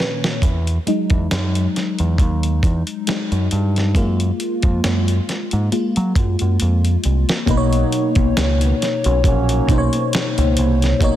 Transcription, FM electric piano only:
0, 0, Header, 1, 2, 480
1, 0, Start_track
1, 0, Key_signature, 5, "major"
1, 0, Tempo, 882353
1, 226, Time_signature, 4, 2, 24, 8
1, 6071, End_track
2, 0, Start_track
2, 0, Title_t, "FM electric piano"
2, 0, Program_c, 0, 5
2, 0, Control_c, 0, 64, 127
2, 0, Note_on_c, 0, 46, 34
2, 0, Note_on_c, 0, 51, 36
2, 0, Note_on_c, 0, 61, 40
2, 0, Note_on_c, 0, 71, 59
2, 233, Control_c, 0, 64, 0
2, 234, Note_off_c, 0, 46, 0
2, 234, Note_off_c, 0, 51, 0
2, 235, Note_off_c, 0, 61, 0
2, 237, Note_off_c, 0, 71, 0
2, 324, Control_c, 0, 64, 127
2, 472, Note_on_c, 0, 54, 46
2, 477, Note_on_c, 0, 56, 44
2, 478, Note_on_c, 0, 63, 51
2, 796, Note_off_c, 0, 54, 0
2, 799, Note_off_c, 0, 56, 0
2, 800, Note_off_c, 0, 63, 0
2, 1674, Note_on_c, 0, 54, 42
2, 1676, Note_on_c, 0, 56, 39
2, 1680, Note_on_c, 0, 63, 46
2, 1888, Note_off_c, 0, 54, 0
2, 1890, Note_off_c, 0, 56, 0
2, 1891, Note_off_c, 0, 63, 0
2, 2152, Note_on_c, 0, 56, 52
2, 2153, Control_c, 0, 64, 0
2, 2156, Note_on_c, 0, 58, 44
2, 2160, Note_on_c, 0, 65, 52
2, 2247, Control_c, 0, 64, 127
2, 3105, Note_off_c, 0, 56, 0
2, 3106, Note_off_c, 0, 58, 0
2, 3109, Note_off_c, 0, 65, 0
2, 3111, Note_on_c, 0, 56, 39
2, 3112, Note_on_c, 0, 58, 35
2, 3116, Note_on_c, 0, 65, 42
2, 3327, Note_off_c, 0, 56, 0
2, 3328, Note_off_c, 0, 58, 0
2, 3329, Note_off_c, 0, 65, 0
2, 4060, Note_on_c, 0, 47, 83
2, 4067, Note_on_c, 0, 58, 76
2, 4074, Control_c, 0, 64, 0
2, 4074, Note_on_c, 0, 63, 76
2, 4083, Note_on_c, 0, 71, 79
2, 4113, Note_off_c, 0, 71, 0
2, 4120, Note_on_c, 0, 73, 95
2, 4168, Control_c, 0, 64, 127
2, 4954, Note_off_c, 0, 47, 0
2, 4958, Note_off_c, 0, 58, 0
2, 4961, Note_off_c, 0, 63, 0
2, 4984, Note_off_c, 0, 73, 0
2, 5261, Note_on_c, 0, 47, 75
2, 5269, Note_on_c, 0, 58, 71
2, 5277, Note_on_c, 0, 63, 71
2, 5287, Note_on_c, 0, 72, 68
2, 5315, Note_off_c, 0, 72, 0
2, 5320, Note_on_c, 0, 73, 92
2, 5932, Note_off_c, 0, 47, 0
2, 5936, Note_off_c, 0, 58, 0
2, 5940, Note_off_c, 0, 63, 0
2, 5961, Note_off_c, 0, 73, 0
2, 5982, Note_on_c, 0, 47, 88
2, 5991, Note_on_c, 0, 58, 76
2, 5997, Note_on_c, 0, 63, 83
2, 6007, Note_on_c, 0, 73, 96
2, 6071, Note_off_c, 0, 47, 0
2, 6071, Note_off_c, 0, 58, 0
2, 6071, Note_off_c, 0, 63, 0
2, 6071, Note_off_c, 0, 73, 0
2, 6071, End_track
0, 0, End_of_file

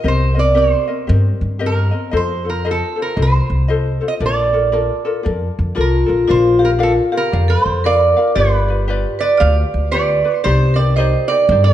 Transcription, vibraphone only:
0, 0, Header, 1, 2, 480
1, 0, Start_track
1, 0, Key_signature, -2, "major"
1, 0, Tempo, 519931
1, 49, Time_signature, 4, 2, 24, 8
1, 10835, End_track
2, 0, Start_track
2, 0, Title_t, "Vibraphone"
2, 0, Program_c, 0, 11
2, 5319, Note_on_c, 0, 65, 67
2, 5773, Note_off_c, 0, 65, 0
2, 5795, Note_on_c, 0, 65, 79
2, 6078, Note_off_c, 0, 65, 0
2, 6086, Note_on_c, 0, 67, 66
2, 6175, Note_off_c, 0, 67, 0
2, 6285, Note_on_c, 0, 65, 64
2, 6420, Note_off_c, 0, 65, 0
2, 6576, Note_on_c, 0, 67, 64
2, 6891, Note_off_c, 0, 67, 0
2, 6908, Note_on_c, 0, 69, 79
2, 7223, Note_off_c, 0, 69, 0
2, 7240, Note_on_c, 0, 70, 79
2, 7692, Note_off_c, 0, 70, 0
2, 7714, Note_on_c, 0, 67, 76
2, 8461, Note_off_c, 0, 67, 0
2, 8484, Note_on_c, 0, 71, 67
2, 8655, Note_on_c, 0, 74, 76
2, 8667, Note_off_c, 0, 71, 0
2, 9119, Note_off_c, 0, 74, 0
2, 9154, Note_on_c, 0, 71, 85
2, 9609, Note_off_c, 0, 71, 0
2, 9636, Note_on_c, 0, 67, 76
2, 9916, Note_on_c, 0, 70, 71
2, 9918, Note_off_c, 0, 67, 0
2, 10102, Note_off_c, 0, 70, 0
2, 10118, Note_on_c, 0, 72, 69
2, 10399, Note_off_c, 0, 72, 0
2, 10427, Note_on_c, 0, 70, 80
2, 10736, Note_off_c, 0, 70, 0
2, 10760, Note_on_c, 0, 69, 71
2, 10835, Note_off_c, 0, 69, 0
2, 10835, End_track
0, 0, End_of_file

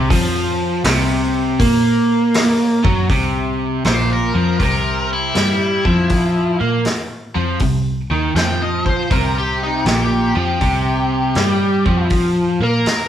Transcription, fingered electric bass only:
0, 0, Header, 1, 3, 480
1, 0, Start_track
1, 0, Tempo, 750939
1, 65, Time_signature, 4, 2, 24, 8
1, 8361, End_track
2, 0, Start_track
2, 0, Title_t, "Fingered electric bass"
2, 0, Program_c, 0, 33
2, 70, Note_on_c, 0, 41, 89
2, 519, Note_off_c, 0, 41, 0
2, 537, Note_on_c, 0, 36, 92
2, 992, Note_off_c, 0, 36, 0
2, 1021, Note_on_c, 0, 46, 95
2, 1791, Note_off_c, 0, 46, 0
2, 1820, Note_on_c, 0, 42, 97
2, 1968, Note_off_c, 0, 42, 0
2, 1981, Note_on_c, 0, 36, 81
2, 2432, Note_off_c, 0, 36, 0
2, 2461, Note_on_c, 0, 34, 85
2, 2755, Note_off_c, 0, 34, 0
2, 2779, Note_on_c, 0, 41, 81
2, 2927, Note_off_c, 0, 41, 0
2, 2940, Note_on_c, 0, 36, 81
2, 3392, Note_off_c, 0, 36, 0
2, 3422, Note_on_c, 0, 43, 79
2, 3716, Note_off_c, 0, 43, 0
2, 3743, Note_on_c, 0, 41, 85
2, 4194, Note_off_c, 0, 41, 0
2, 4222, Note_on_c, 0, 46, 80
2, 4368, Note_off_c, 0, 46, 0
2, 4701, Note_on_c, 0, 41, 77
2, 4848, Note_off_c, 0, 41, 0
2, 4862, Note_on_c, 0, 36, 70
2, 5156, Note_off_c, 0, 36, 0
2, 5176, Note_on_c, 0, 39, 86
2, 5326, Note_off_c, 0, 39, 0
2, 5336, Note_on_c, 0, 41, 84
2, 5791, Note_off_c, 0, 41, 0
2, 5823, Note_on_c, 0, 36, 79
2, 6275, Note_off_c, 0, 36, 0
2, 6296, Note_on_c, 0, 34, 85
2, 6594, Note_off_c, 0, 34, 0
2, 6620, Note_on_c, 0, 41, 80
2, 6768, Note_off_c, 0, 41, 0
2, 6781, Note_on_c, 0, 36, 86
2, 7235, Note_off_c, 0, 36, 0
2, 7258, Note_on_c, 0, 43, 87
2, 7555, Note_off_c, 0, 43, 0
2, 7582, Note_on_c, 0, 41, 86
2, 8035, Note_off_c, 0, 41, 0
2, 8053, Note_on_c, 0, 46, 80
2, 8206, Note_off_c, 0, 46, 0
2, 8361, End_track
3, 0, Start_track
3, 0, Title_t, "Muted fingered electric bass strokes"
3, 4385, Note_on_c, 9, 29, 36
3, 4449, Note_off_c, 9, 29, 0
3, 8215, Note_on_c, 9, 29, 37
3, 8279, Note_off_c, 9, 29, 0
3, 8361, End_track
0, 0, End_of_file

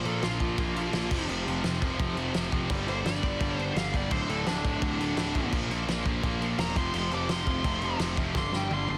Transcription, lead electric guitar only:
0, 0, Header, 1, 2, 480
1, 0, Start_track
1, 0, Tempo, 353149
1, 1753, Time_signature, 4, 2, 24, 8
1, 12204, End_track
2, 0, Start_track
2, 0, Title_t, "Lead electric guitar"
2, 0, Program_c, 0, 29
2, 78, Note_on_c, 0, 69, 80
2, 307, Note_off_c, 0, 69, 0
2, 320, Note_on_c, 0, 65, 104
2, 1715, Note_off_c, 0, 65, 0
2, 3930, Note_on_c, 0, 72, 96
2, 4156, Note_off_c, 0, 72, 0
2, 4167, Note_on_c, 0, 74, 92
2, 4874, Note_off_c, 0, 74, 0
2, 4874, Note_on_c, 0, 72, 92
2, 5093, Note_off_c, 0, 72, 0
2, 5132, Note_on_c, 0, 77, 93
2, 5382, Note_off_c, 0, 77, 0
2, 5382, Note_on_c, 0, 74, 78
2, 5601, Note_off_c, 0, 74, 0
2, 5601, Note_on_c, 0, 72, 84
2, 5831, Note_off_c, 0, 72, 0
2, 5834, Note_on_c, 0, 69, 99
2, 6067, Note_off_c, 0, 69, 0
2, 6071, Note_on_c, 0, 62, 102
2, 7470, Note_off_c, 0, 62, 0
2, 8963, Note_on_c, 0, 82, 116
2, 9191, Note_off_c, 0, 82, 0
2, 9212, Note_on_c, 0, 84, 93
2, 9668, Note_off_c, 0, 84, 0
2, 9712, Note_on_c, 0, 86, 102
2, 9927, Note_off_c, 0, 86, 0
2, 9927, Note_on_c, 0, 84, 108
2, 10851, Note_off_c, 0, 84, 0
2, 11388, Note_on_c, 0, 84, 100
2, 11603, Note_off_c, 0, 84, 0
2, 11636, Note_on_c, 0, 79, 91
2, 11848, Note_off_c, 0, 79, 0
2, 11872, Note_on_c, 0, 84, 95
2, 12086, Note_off_c, 0, 84, 0
2, 12108, Note_on_c, 0, 84, 99
2, 12204, Note_off_c, 0, 84, 0
2, 12204, End_track
0, 0, End_of_file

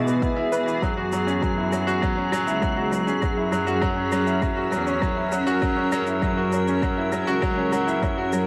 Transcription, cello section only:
0, 0, Header, 1, 2, 480
1, 0, Start_track
1, 0, Tempo, 600000
1, 657, Time_signature, 4, 2, 24, 8
1, 6774, End_track
2, 0, Start_track
2, 0, Title_t, "Cello section"
2, 0, Program_c, 0, 48
2, 0, Note_on_c, 0, 47, 93
2, 109, Note_off_c, 0, 47, 0
2, 660, Note_on_c, 0, 42, 92
2, 1924, Note_off_c, 0, 42, 0
2, 1977, Note_on_c, 0, 37, 93
2, 2523, Note_off_c, 0, 37, 0
2, 2580, Note_on_c, 0, 42, 103
2, 3724, Note_off_c, 0, 42, 0
2, 3778, Note_on_c, 0, 40, 102
2, 3949, Note_off_c, 0, 40, 0
2, 4497, Note_on_c, 0, 42, 106
2, 5763, Note_off_c, 0, 42, 0
2, 5817, Note_on_c, 0, 37, 93
2, 6363, Note_off_c, 0, 37, 0
2, 6421, Note_on_c, 0, 42, 96
2, 6774, Note_off_c, 0, 42, 0
2, 6774, End_track
0, 0, End_of_file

